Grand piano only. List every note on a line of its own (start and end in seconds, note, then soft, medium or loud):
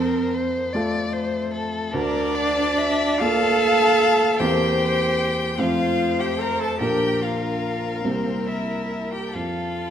0.00 0.70 F2 medium
0.75 1.90 A3 soft
0.75 1.90 F4 medium
0.75 1.90 A4 medium
1.94 3.17 D2 medium
3.21 4.36 A#3 medium
3.21 4.37 F4 soft
3.21 4.37 D5 medium
4.40 5.55 E2 medium
4.40 5.55 A#3 soft
4.40 5.55 C4 soft
4.40 5.55 C5 soft
5.58 6.76 F2 medium
5.58 6.76 A3 soft
5.58 6.76 C4 soft
5.58 6.76 C5 soft
6.80 8.00 A#1 soft
6.80 8.00 A#3 soft
6.80 8.00 D4 soft
6.80 8.01 A#4 soft
8.05 9.31 C2 soft
8.05 9.31 A#3 soft
8.05 9.31 C4 soft
8.05 9.31 G4 soft
9.35 9.90 F2 soft